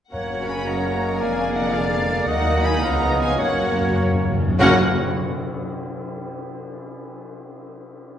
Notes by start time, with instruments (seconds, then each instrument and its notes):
0.12 double bass section F#1, timpani F#2, cello section F#2, trombone section C#3 F#3, bassoon A#3, viola section A#3 C#4, french horn section A#3 A#4, violin section F#4 A#4 F#5, clarinet A#4, flute C#5, oboe C#5
0.49 flute G#5, violin section B5
0.66 clarinet D#5, flute F#5, violin section A#5
0.87 clarinet C#5
1.03 clarinet D#5
1.19 double bass section F1, cello section F2, trombone section D3 G#3, viola section D4, violin section G#4 G#5, oboe D5, clarinet F5, flute F5
1.54 flute D#5, violin section F#5
1.72 clarinet D5, flute D5, violin section F5
2.26 cello section D#2, double bass section D#2, trombone section D#3 F#3, bassoon A#3, viola section A#3 D#4, french horn section A#3 A#4, violin section F#4 A#4 F#5, clarinet D#5, oboe D#5, flute D#5
2.64 flute G#5, violin section B5
2.81 cello section C#2, double bass section C#2, trombone section F3, bassoon B3, french horn section B3 G#4, viola section B3, violin section F4 C#5 A#5, clarinet F5, flute F#5
3.21 flute F5, violin section G#5
3.39 double bass section F#1, cello section F#2, timpani F#2, trombone section C#3 F#3, bassoon A#3, french horn section A#3 F#4, viola section A#3 C#4, violin section F#4 F#5, clarinet A#4, oboe C#5, flute C#5
3.48 timpani F#2
3.56 timpani F#2
3.64 timpani F#2
3.72 timpani F#2
3.81 timpani F#2
3.89 timpani F#2
3.97 timpani F#2
4.06 timpani F#2
4.13 timpani F#2
4.23 timpani F#2
4.31 timpani F#2
4.39 timpani F#2
4.48 timpani F#2
4.59 double bass section F#1, cello section F#2, timpani F#2, bassoon C#3, trombone section C#3 F#3, french horn section A#3 F#4, viola section A#3 C#4, clarinet F#4, violin section F#4 C#5 F#5, oboe A#4, flute F#5, tam-tam